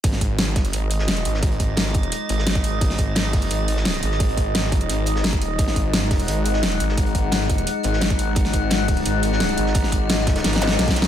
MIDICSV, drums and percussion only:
0, 0, Header, 1, 2, 480
1, 0, Start_track
1, 0, Tempo, 346821
1, 54, Time_signature, 4, 2, 24, 8
1, 15328, End_track
2, 0, Start_track
2, 0, Title_t, "Drums"
2, 54, Note_on_c, 9, 36, 116
2, 54, Note_on_c, 9, 42, 94
2, 164, Note_off_c, 9, 42, 0
2, 164, Note_on_c, 9, 42, 43
2, 174, Note_on_c, 9, 38, 36
2, 192, Note_off_c, 9, 36, 0
2, 294, Note_off_c, 9, 42, 0
2, 294, Note_on_c, 9, 36, 57
2, 294, Note_on_c, 9, 42, 64
2, 312, Note_off_c, 9, 38, 0
2, 432, Note_off_c, 9, 36, 0
2, 433, Note_off_c, 9, 42, 0
2, 532, Note_on_c, 9, 42, 91
2, 533, Note_off_c, 9, 42, 0
2, 533, Note_on_c, 9, 38, 113
2, 533, Note_on_c, 9, 42, 94
2, 538, Note_off_c, 9, 38, 0
2, 538, Note_on_c, 9, 38, 109
2, 672, Note_off_c, 9, 42, 0
2, 676, Note_off_c, 9, 38, 0
2, 774, Note_on_c, 9, 36, 106
2, 774, Note_on_c, 9, 42, 68
2, 775, Note_on_c, 9, 38, 53
2, 780, Note_on_c, 9, 46, 72
2, 894, Note_off_c, 9, 42, 0
2, 894, Note_on_c, 9, 42, 36
2, 912, Note_off_c, 9, 36, 0
2, 913, Note_off_c, 9, 38, 0
2, 919, Note_off_c, 9, 46, 0
2, 1015, Note_off_c, 9, 42, 0
2, 1015, Note_on_c, 9, 42, 92
2, 1019, Note_off_c, 9, 42, 0
2, 1019, Note_on_c, 9, 42, 86
2, 1158, Note_off_c, 9, 42, 0
2, 1253, Note_on_c, 9, 42, 70
2, 1254, Note_off_c, 9, 42, 0
2, 1254, Note_on_c, 9, 42, 64
2, 1368, Note_on_c, 9, 38, 50
2, 1392, Note_off_c, 9, 42, 0
2, 1493, Note_off_c, 9, 38, 0
2, 1493, Note_on_c, 9, 38, 114
2, 1493, Note_on_c, 9, 42, 96
2, 1501, Note_off_c, 9, 38, 0
2, 1501, Note_on_c, 9, 38, 112
2, 1503, Note_off_c, 9, 42, 0
2, 1503, Note_on_c, 9, 42, 83
2, 1614, Note_off_c, 9, 42, 0
2, 1614, Note_on_c, 9, 42, 38
2, 1639, Note_off_c, 9, 38, 0
2, 1734, Note_off_c, 9, 42, 0
2, 1734, Note_on_c, 9, 42, 71
2, 1738, Note_off_c, 9, 42, 0
2, 1738, Note_on_c, 9, 42, 65
2, 1857, Note_on_c, 9, 38, 44
2, 1877, Note_off_c, 9, 42, 0
2, 1974, Note_on_c, 9, 36, 122
2, 1974, Note_on_c, 9, 42, 86
2, 1977, Note_off_c, 9, 42, 0
2, 1977, Note_on_c, 9, 42, 93
2, 1995, Note_off_c, 9, 38, 0
2, 2095, Note_off_c, 9, 42, 0
2, 2095, Note_on_c, 9, 42, 38
2, 2112, Note_off_c, 9, 36, 0
2, 2211, Note_off_c, 9, 42, 0
2, 2211, Note_on_c, 9, 42, 66
2, 2213, Note_off_c, 9, 42, 0
2, 2213, Note_on_c, 9, 42, 63
2, 2214, Note_on_c, 9, 36, 60
2, 2352, Note_off_c, 9, 36, 0
2, 2352, Note_off_c, 9, 42, 0
2, 2447, Note_on_c, 9, 42, 78
2, 2449, Note_on_c, 9, 38, 101
2, 2454, Note_off_c, 9, 38, 0
2, 2454, Note_off_c, 9, 42, 0
2, 2454, Note_on_c, 9, 38, 120
2, 2454, Note_on_c, 9, 42, 90
2, 2579, Note_off_c, 9, 38, 0
2, 2579, Note_on_c, 9, 38, 51
2, 2592, Note_off_c, 9, 42, 0
2, 2686, Note_on_c, 9, 42, 64
2, 2694, Note_off_c, 9, 42, 0
2, 2694, Note_on_c, 9, 36, 108
2, 2694, Note_on_c, 9, 42, 64
2, 2718, Note_off_c, 9, 38, 0
2, 2814, Note_off_c, 9, 42, 0
2, 2814, Note_on_c, 9, 42, 36
2, 2832, Note_off_c, 9, 36, 0
2, 2933, Note_off_c, 9, 42, 0
2, 2933, Note_on_c, 9, 42, 96
2, 2934, Note_off_c, 9, 42, 0
2, 2934, Note_on_c, 9, 42, 81
2, 3073, Note_off_c, 9, 42, 0
2, 3173, Note_on_c, 9, 42, 65
2, 3185, Note_off_c, 9, 42, 0
2, 3185, Note_on_c, 9, 42, 72
2, 3300, Note_on_c, 9, 38, 48
2, 3324, Note_off_c, 9, 42, 0
2, 3413, Note_off_c, 9, 38, 0
2, 3413, Note_on_c, 9, 38, 117
2, 3413, Note_on_c, 9, 42, 87
2, 3415, Note_off_c, 9, 42, 0
2, 3415, Note_on_c, 9, 42, 80
2, 3416, Note_off_c, 9, 38, 0
2, 3416, Note_on_c, 9, 38, 104
2, 3533, Note_off_c, 9, 42, 0
2, 3533, Note_on_c, 9, 36, 105
2, 3533, Note_on_c, 9, 42, 36
2, 3534, Note_off_c, 9, 38, 0
2, 3534, Note_on_c, 9, 38, 39
2, 3653, Note_off_c, 9, 42, 0
2, 3653, Note_on_c, 9, 42, 66
2, 3659, Note_off_c, 9, 42, 0
2, 3659, Note_on_c, 9, 42, 69
2, 3672, Note_off_c, 9, 36, 0
2, 3672, Note_off_c, 9, 38, 0
2, 3797, Note_off_c, 9, 42, 0
2, 3893, Note_on_c, 9, 36, 123
2, 3894, Note_on_c, 9, 42, 86
2, 3900, Note_off_c, 9, 42, 0
2, 3900, Note_on_c, 9, 42, 92
2, 4015, Note_on_c, 9, 38, 37
2, 4022, Note_off_c, 9, 42, 0
2, 4022, Note_on_c, 9, 42, 37
2, 4032, Note_off_c, 9, 36, 0
2, 4125, Note_off_c, 9, 42, 0
2, 4125, Note_on_c, 9, 42, 66
2, 4134, Note_off_c, 9, 42, 0
2, 4134, Note_on_c, 9, 36, 63
2, 4134, Note_on_c, 9, 42, 60
2, 4153, Note_off_c, 9, 38, 0
2, 4272, Note_off_c, 9, 36, 0
2, 4272, Note_off_c, 9, 42, 0
2, 4368, Note_on_c, 9, 38, 114
2, 4374, Note_off_c, 9, 38, 0
2, 4374, Note_on_c, 9, 38, 122
2, 4374, Note_on_c, 9, 42, 87
2, 4380, Note_off_c, 9, 42, 0
2, 4380, Note_on_c, 9, 42, 76
2, 4512, Note_off_c, 9, 38, 0
2, 4518, Note_off_c, 9, 42, 0
2, 4614, Note_on_c, 9, 36, 110
2, 4614, Note_on_c, 9, 42, 63
2, 4617, Note_on_c, 9, 38, 47
2, 4618, Note_on_c, 9, 46, 84
2, 4734, Note_off_c, 9, 42, 0
2, 4734, Note_on_c, 9, 42, 35
2, 4752, Note_off_c, 9, 36, 0
2, 4755, Note_off_c, 9, 38, 0
2, 4757, Note_off_c, 9, 46, 0
2, 4854, Note_off_c, 9, 42, 0
2, 4854, Note_on_c, 9, 42, 89
2, 4858, Note_off_c, 9, 42, 0
2, 4858, Note_on_c, 9, 42, 95
2, 4996, Note_off_c, 9, 42, 0
2, 5093, Note_on_c, 9, 42, 67
2, 5094, Note_off_c, 9, 42, 0
2, 5094, Note_on_c, 9, 42, 61
2, 5211, Note_on_c, 9, 38, 46
2, 5233, Note_off_c, 9, 42, 0
2, 5329, Note_off_c, 9, 38, 0
2, 5329, Note_on_c, 9, 38, 115
2, 5330, Note_on_c, 9, 42, 86
2, 5334, Note_off_c, 9, 38, 0
2, 5334, Note_off_c, 9, 42, 0
2, 5334, Note_on_c, 9, 38, 117
2, 5334, Note_on_c, 9, 42, 86
2, 5454, Note_off_c, 9, 42, 0
2, 5454, Note_on_c, 9, 42, 35
2, 5473, Note_off_c, 9, 38, 0
2, 5574, Note_off_c, 9, 42, 0
2, 5574, Note_on_c, 9, 42, 65
2, 5575, Note_off_c, 9, 42, 0
2, 5575, Note_on_c, 9, 42, 59
2, 5692, Note_on_c, 9, 38, 40
2, 5713, Note_off_c, 9, 42, 0
2, 5814, Note_on_c, 9, 36, 116
2, 5814, Note_on_c, 9, 42, 86
2, 5823, Note_off_c, 9, 42, 0
2, 5823, Note_on_c, 9, 42, 93
2, 5830, Note_off_c, 9, 38, 0
2, 5937, Note_off_c, 9, 42, 0
2, 5937, Note_on_c, 9, 42, 44
2, 5952, Note_off_c, 9, 36, 0
2, 6053, Note_off_c, 9, 42, 0
2, 6053, Note_on_c, 9, 42, 62
2, 6054, Note_on_c, 9, 36, 60
2, 6055, Note_off_c, 9, 42, 0
2, 6055, Note_on_c, 9, 42, 61
2, 6192, Note_off_c, 9, 36, 0
2, 6193, Note_off_c, 9, 42, 0
2, 6295, Note_on_c, 9, 38, 113
2, 6295, Note_on_c, 9, 42, 80
2, 6297, Note_off_c, 9, 38, 0
2, 6297, Note_on_c, 9, 38, 106
2, 6303, Note_off_c, 9, 42, 0
2, 6303, Note_on_c, 9, 42, 81
2, 6426, Note_off_c, 9, 38, 0
2, 6426, Note_on_c, 9, 38, 53
2, 6441, Note_off_c, 9, 42, 0
2, 6534, Note_on_c, 9, 36, 108
2, 6535, Note_on_c, 9, 42, 61
2, 6543, Note_off_c, 9, 42, 0
2, 6543, Note_on_c, 9, 42, 72
2, 6565, Note_off_c, 9, 38, 0
2, 6655, Note_off_c, 9, 42, 0
2, 6655, Note_on_c, 9, 42, 34
2, 6672, Note_off_c, 9, 36, 0
2, 6775, Note_off_c, 9, 42, 0
2, 6775, Note_on_c, 9, 42, 90
2, 6783, Note_off_c, 9, 42, 0
2, 6783, Note_on_c, 9, 42, 87
2, 6921, Note_off_c, 9, 42, 0
2, 7005, Note_on_c, 9, 42, 64
2, 7015, Note_off_c, 9, 42, 0
2, 7015, Note_on_c, 9, 42, 60
2, 7139, Note_on_c, 9, 38, 57
2, 7153, Note_off_c, 9, 42, 0
2, 7250, Note_on_c, 9, 42, 89
2, 7251, Note_off_c, 9, 38, 0
2, 7251, Note_on_c, 9, 38, 121
2, 7255, Note_off_c, 9, 38, 0
2, 7255, Note_off_c, 9, 42, 0
2, 7255, Note_on_c, 9, 38, 121
2, 7255, Note_on_c, 9, 42, 83
2, 7371, Note_off_c, 9, 38, 0
2, 7371, Note_on_c, 9, 38, 40
2, 7374, Note_on_c, 9, 36, 105
2, 7375, Note_off_c, 9, 42, 0
2, 7375, Note_on_c, 9, 42, 34
2, 7494, Note_off_c, 9, 42, 0
2, 7494, Note_on_c, 9, 42, 62
2, 7495, Note_off_c, 9, 42, 0
2, 7495, Note_on_c, 9, 42, 57
2, 7509, Note_off_c, 9, 38, 0
2, 7512, Note_off_c, 9, 36, 0
2, 7633, Note_off_c, 9, 42, 0
2, 7730, Note_on_c, 9, 42, 91
2, 7734, Note_on_c, 9, 36, 116
2, 7735, Note_off_c, 9, 42, 0
2, 7735, Note_on_c, 9, 42, 84
2, 7855, Note_on_c, 9, 38, 38
2, 7872, Note_off_c, 9, 36, 0
2, 7873, Note_off_c, 9, 42, 0
2, 7974, Note_on_c, 9, 36, 60
2, 7974, Note_on_c, 9, 42, 59
2, 7975, Note_off_c, 9, 42, 0
2, 7975, Note_on_c, 9, 42, 66
2, 7993, Note_off_c, 9, 38, 0
2, 8112, Note_off_c, 9, 36, 0
2, 8113, Note_off_c, 9, 42, 0
2, 8213, Note_on_c, 9, 38, 110
2, 8214, Note_off_c, 9, 38, 0
2, 8214, Note_on_c, 9, 38, 114
2, 8214, Note_on_c, 9, 42, 83
2, 8219, Note_off_c, 9, 42, 0
2, 8219, Note_on_c, 9, 42, 89
2, 8352, Note_off_c, 9, 38, 0
2, 8358, Note_off_c, 9, 42, 0
2, 8454, Note_on_c, 9, 36, 104
2, 8454, Note_on_c, 9, 46, 84
2, 8455, Note_on_c, 9, 42, 63
2, 8456, Note_on_c, 9, 38, 45
2, 8574, Note_off_c, 9, 42, 0
2, 8574, Note_on_c, 9, 42, 35
2, 8592, Note_off_c, 9, 36, 0
2, 8592, Note_off_c, 9, 46, 0
2, 8594, Note_off_c, 9, 38, 0
2, 8694, Note_off_c, 9, 42, 0
2, 8694, Note_on_c, 9, 42, 88
2, 8696, Note_off_c, 9, 42, 0
2, 8696, Note_on_c, 9, 42, 95
2, 8835, Note_off_c, 9, 42, 0
2, 8934, Note_on_c, 9, 42, 61
2, 8938, Note_off_c, 9, 42, 0
2, 8938, Note_on_c, 9, 42, 68
2, 9045, Note_on_c, 9, 38, 48
2, 9077, Note_off_c, 9, 42, 0
2, 9174, Note_off_c, 9, 38, 0
2, 9174, Note_on_c, 9, 38, 117
2, 9174, Note_on_c, 9, 42, 85
2, 9175, Note_off_c, 9, 38, 0
2, 9175, Note_on_c, 9, 38, 120
2, 9182, Note_off_c, 9, 42, 0
2, 9182, Note_on_c, 9, 42, 94
2, 9295, Note_off_c, 9, 42, 0
2, 9295, Note_on_c, 9, 42, 35
2, 9313, Note_off_c, 9, 38, 0
2, 9415, Note_off_c, 9, 42, 0
2, 9415, Note_on_c, 9, 42, 63
2, 9533, Note_on_c, 9, 38, 40
2, 9553, Note_off_c, 9, 42, 0
2, 9653, Note_on_c, 9, 42, 93
2, 9654, Note_off_c, 9, 42, 0
2, 9654, Note_on_c, 9, 36, 113
2, 9654, Note_on_c, 9, 42, 92
2, 9671, Note_off_c, 9, 38, 0
2, 9774, Note_off_c, 9, 42, 0
2, 9774, Note_on_c, 9, 42, 43
2, 9792, Note_off_c, 9, 36, 0
2, 9893, Note_off_c, 9, 42, 0
2, 9893, Note_on_c, 9, 36, 59
2, 9893, Note_on_c, 9, 42, 62
2, 9894, Note_off_c, 9, 42, 0
2, 9894, Note_on_c, 9, 42, 70
2, 10032, Note_off_c, 9, 36, 0
2, 10033, Note_off_c, 9, 42, 0
2, 10128, Note_on_c, 9, 38, 115
2, 10131, Note_on_c, 9, 42, 85
2, 10134, Note_off_c, 9, 38, 0
2, 10134, Note_off_c, 9, 42, 0
2, 10134, Note_on_c, 9, 38, 109
2, 10134, Note_on_c, 9, 42, 87
2, 10251, Note_off_c, 9, 38, 0
2, 10251, Note_on_c, 9, 38, 56
2, 10272, Note_off_c, 9, 42, 0
2, 10373, Note_on_c, 9, 36, 100
2, 10374, Note_on_c, 9, 42, 66
2, 10385, Note_off_c, 9, 42, 0
2, 10385, Note_on_c, 9, 42, 74
2, 10389, Note_off_c, 9, 38, 0
2, 10494, Note_off_c, 9, 42, 0
2, 10494, Note_on_c, 9, 42, 36
2, 10512, Note_off_c, 9, 36, 0
2, 10614, Note_off_c, 9, 42, 0
2, 10614, Note_on_c, 9, 42, 90
2, 10617, Note_off_c, 9, 42, 0
2, 10617, Note_on_c, 9, 42, 86
2, 10756, Note_off_c, 9, 42, 0
2, 10842, Note_on_c, 9, 42, 61
2, 10854, Note_off_c, 9, 42, 0
2, 10854, Note_on_c, 9, 42, 63
2, 10976, Note_on_c, 9, 38, 49
2, 10993, Note_off_c, 9, 42, 0
2, 11087, Note_off_c, 9, 38, 0
2, 11087, Note_on_c, 9, 38, 108
2, 11093, Note_off_c, 9, 38, 0
2, 11093, Note_on_c, 9, 38, 114
2, 11093, Note_on_c, 9, 42, 89
2, 11095, Note_off_c, 9, 42, 0
2, 11095, Note_on_c, 9, 42, 79
2, 11210, Note_off_c, 9, 38, 0
2, 11210, Note_on_c, 9, 38, 37
2, 11214, Note_off_c, 9, 42, 0
2, 11214, Note_on_c, 9, 36, 97
2, 11214, Note_on_c, 9, 42, 36
2, 11330, Note_off_c, 9, 42, 0
2, 11330, Note_on_c, 9, 42, 60
2, 11334, Note_off_c, 9, 42, 0
2, 11334, Note_on_c, 9, 42, 66
2, 11349, Note_off_c, 9, 38, 0
2, 11352, Note_off_c, 9, 36, 0
2, 11473, Note_off_c, 9, 42, 0
2, 11568, Note_on_c, 9, 42, 82
2, 11573, Note_off_c, 9, 42, 0
2, 11573, Note_on_c, 9, 42, 96
2, 11574, Note_on_c, 9, 36, 113
2, 11692, Note_off_c, 9, 42, 0
2, 11692, Note_on_c, 9, 42, 43
2, 11694, Note_on_c, 9, 38, 35
2, 11712, Note_off_c, 9, 36, 0
2, 11807, Note_off_c, 9, 42, 0
2, 11807, Note_on_c, 9, 42, 71
2, 11814, Note_off_c, 9, 42, 0
2, 11814, Note_on_c, 9, 36, 55
2, 11814, Note_on_c, 9, 42, 64
2, 11832, Note_off_c, 9, 38, 0
2, 11952, Note_off_c, 9, 36, 0
2, 11952, Note_off_c, 9, 42, 0
2, 12048, Note_on_c, 9, 38, 118
2, 12049, Note_on_c, 9, 42, 87
2, 12054, Note_off_c, 9, 38, 0
2, 12054, Note_off_c, 9, 42, 0
2, 12054, Note_on_c, 9, 38, 109
2, 12054, Note_on_c, 9, 42, 89
2, 12192, Note_off_c, 9, 38, 0
2, 12192, Note_off_c, 9, 42, 0
2, 12290, Note_on_c, 9, 46, 77
2, 12294, Note_on_c, 9, 36, 102
2, 12294, Note_on_c, 9, 42, 66
2, 12414, Note_off_c, 9, 42, 0
2, 12414, Note_on_c, 9, 42, 35
2, 12429, Note_off_c, 9, 46, 0
2, 12432, Note_off_c, 9, 36, 0
2, 12531, Note_off_c, 9, 42, 0
2, 12531, Note_on_c, 9, 42, 84
2, 12533, Note_off_c, 9, 42, 0
2, 12533, Note_on_c, 9, 42, 98
2, 12672, Note_off_c, 9, 42, 0
2, 12773, Note_on_c, 9, 42, 67
2, 12778, Note_off_c, 9, 42, 0
2, 12778, Note_on_c, 9, 42, 72
2, 12903, Note_on_c, 9, 38, 47
2, 12916, Note_off_c, 9, 42, 0
2, 13014, Note_off_c, 9, 38, 0
2, 13014, Note_on_c, 9, 38, 110
2, 13014, Note_on_c, 9, 42, 91
2, 13018, Note_off_c, 9, 42, 0
2, 13018, Note_on_c, 9, 42, 79
2, 13019, Note_off_c, 9, 38, 0
2, 13019, Note_on_c, 9, 38, 116
2, 13134, Note_off_c, 9, 42, 0
2, 13134, Note_on_c, 9, 42, 37
2, 13158, Note_off_c, 9, 38, 0
2, 13249, Note_off_c, 9, 42, 0
2, 13249, Note_on_c, 9, 42, 65
2, 13254, Note_off_c, 9, 42, 0
2, 13254, Note_on_c, 9, 42, 69
2, 13370, Note_on_c, 9, 38, 43
2, 13392, Note_off_c, 9, 42, 0
2, 13487, Note_on_c, 9, 42, 89
2, 13494, Note_off_c, 9, 42, 0
2, 13494, Note_on_c, 9, 36, 110
2, 13494, Note_on_c, 9, 42, 91
2, 13508, Note_off_c, 9, 38, 0
2, 13614, Note_on_c, 9, 38, 35
2, 13618, Note_off_c, 9, 42, 0
2, 13618, Note_on_c, 9, 42, 43
2, 13632, Note_off_c, 9, 36, 0
2, 13726, Note_off_c, 9, 42, 0
2, 13726, Note_on_c, 9, 42, 71
2, 13734, Note_off_c, 9, 42, 0
2, 13734, Note_on_c, 9, 36, 58
2, 13734, Note_on_c, 9, 42, 66
2, 13752, Note_off_c, 9, 38, 0
2, 13872, Note_off_c, 9, 36, 0
2, 13872, Note_off_c, 9, 42, 0
2, 13969, Note_on_c, 9, 42, 83
2, 13973, Note_off_c, 9, 42, 0
2, 13973, Note_on_c, 9, 38, 110
2, 13973, Note_on_c, 9, 42, 94
2, 13980, Note_off_c, 9, 38, 0
2, 13980, Note_on_c, 9, 38, 102
2, 14096, Note_off_c, 9, 38, 0
2, 14096, Note_on_c, 9, 38, 58
2, 14112, Note_off_c, 9, 42, 0
2, 14211, Note_off_c, 9, 38, 0
2, 14211, Note_on_c, 9, 38, 99
2, 14213, Note_on_c, 9, 42, 69
2, 14214, Note_on_c, 9, 36, 103
2, 14219, Note_off_c, 9, 42, 0
2, 14219, Note_on_c, 9, 42, 76
2, 14332, Note_off_c, 9, 38, 0
2, 14332, Note_on_c, 9, 38, 104
2, 14334, Note_off_c, 9, 42, 0
2, 14334, Note_on_c, 9, 42, 37
2, 14352, Note_off_c, 9, 36, 0
2, 14454, Note_off_c, 9, 38, 0
2, 14454, Note_off_c, 9, 42, 0
2, 14454, Note_on_c, 9, 38, 71
2, 14454, Note_on_c, 9, 42, 99
2, 14455, Note_off_c, 9, 42, 0
2, 14455, Note_on_c, 9, 42, 78
2, 14460, Note_off_c, 9, 38, 0
2, 14460, Note_on_c, 9, 38, 97
2, 14574, Note_off_c, 9, 42, 0
2, 14574, Note_on_c, 9, 42, 38
2, 14577, Note_off_c, 9, 38, 0
2, 14577, Note_on_c, 9, 38, 105
2, 14614, Note_off_c, 9, 38, 0
2, 14614, Note_on_c, 9, 38, 74
2, 14686, Note_off_c, 9, 42, 0
2, 14686, Note_on_c, 9, 42, 63
2, 14694, Note_off_c, 9, 42, 0
2, 14694, Note_on_c, 9, 42, 66
2, 14752, Note_off_c, 9, 38, 0
2, 14774, Note_on_c, 9, 38, 81
2, 14808, Note_off_c, 9, 42, 0
2, 14808, Note_on_c, 9, 42, 77
2, 14817, Note_off_c, 9, 38, 0
2, 14817, Note_on_c, 9, 38, 97
2, 14927, Note_off_c, 9, 42, 0
2, 14927, Note_on_c, 9, 42, 72
2, 14931, Note_off_c, 9, 38, 0
2, 14931, Note_on_c, 9, 38, 101
2, 14934, Note_off_c, 9, 38, 0
2, 14934, Note_off_c, 9, 42, 0
2, 14934, Note_on_c, 9, 38, 86
2, 14934, Note_on_c, 9, 42, 92
2, 15045, Note_off_c, 9, 38, 0
2, 15045, Note_on_c, 9, 38, 108
2, 15049, Note_off_c, 9, 42, 0
2, 15049, Note_on_c, 9, 42, 77
2, 15054, Note_off_c, 9, 42, 0
2, 15054, Note_on_c, 9, 36, 99
2, 15054, Note_on_c, 9, 42, 38
2, 15093, Note_off_c, 9, 38, 0
2, 15093, Note_on_c, 9, 38, 93
2, 15164, Note_off_c, 9, 38, 0
2, 15164, Note_on_c, 9, 38, 97
2, 15167, Note_off_c, 9, 42, 0
2, 15167, Note_on_c, 9, 42, 72
2, 15174, Note_off_c, 9, 42, 0
2, 15174, Note_on_c, 9, 42, 71
2, 15192, Note_off_c, 9, 36, 0
2, 15253, Note_off_c, 9, 38, 0
2, 15253, Note_on_c, 9, 38, 108
2, 15312, Note_off_c, 9, 42, 0
2, 15328, Note_off_c, 9, 38, 0
2, 15328, End_track
0, 0, End_of_file